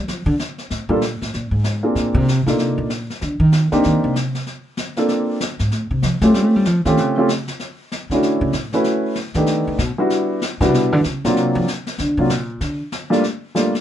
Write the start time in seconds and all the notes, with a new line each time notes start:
0.08 F3, brush sweep, snare
0.26 D3
0.39 snare
0.58 snare
0.70 A2, brush sweep, snare
0.89 A#2 G3 A#3 D4 F4 A4
1.02 snare
1.21 A2, snare
1.34 A#2, brush sweep, snare
1.51 G#2
1.64 snare
1.83 A#3 C4 D4 F4 G#4
1.95 A#2, brush sweep, snare
2.14 C3
2.28 snare
2.46 A#2 A#3 D4 D#4 F4 A4, snare
2.59 C3, brush sweep, snare
2.78 A#2
2.90 snare
3.10 snare
3.21 D3, brush sweep, snare
3.40 D#3
3.52 snare
3.72 D3 A#3 C4 D4 D#4 G4, snare
3.83 D#3, brush sweep, snare
4.04 C3
4.16 snare
4.35 snare
4.47 brush sweep, snare
4.77 snare
4.97 A#3 C4 D4 F4 A4, snare
5.08 brush sweep, snare
5.40 snare
5.59 G#2, snare
5.71 A2, brush sweep, snare
5.91 C3
6.03 F3, snare
6.21 A3 C4 C#4 F4 G4, snare
6.34 G3, brush sweep, snare
6.46 A3
6.56 G3
6.65 F3, snare
6.85 D#3 A3 C4 C#4 F4 G4, snare
6.97 C#3, brush sweep, snare
7.18 A3 C4 C#4 F4 G4
7.29 snare
7.48 snare
7.60 brush sweep, snare
7.92 snare
8.10 D3 A3 C#4 D4 E4 F#4, snare
8.23 brush sweep, snare
8.41 C#3
8.53 A2, snare
8.72 A3 C#4 E4 F#4 B4, snare
8.84 brush sweep, snare
9.15 snare
9.34 D#3 A3 B3 D4 D#4 G4, snare
9.46 brush sweep, snare
9.67 D3
9.78 B2, snare
9.98 G3 B3 D4 E4 F#4
10.10 brush sweep, snare
10.42 snare
10.61 C#3 G3 B3 D4 E4 F#4, snare
10.74 B2, brush sweep, snare
10.92 D3
11.04 snare
11.24 B2 F#3 A#3 C4 D4 F4, snare
11.37 C3, brush sweep, snare
11.55 F3
11.68 snare
11.87 snare
11.98 D3, brush sweep, snare
12.17 C3 F#3 A#3 C4 D4 F4
12.30 A#2, snare
12.61 D3, brush sweep, snare
12.92 snare
13.10 G3 A3 A#3 D4 F4, snare
13.23 brush sweep, snare
13.55 G3 A3 A#3 D4 F4, snare
13.75 snare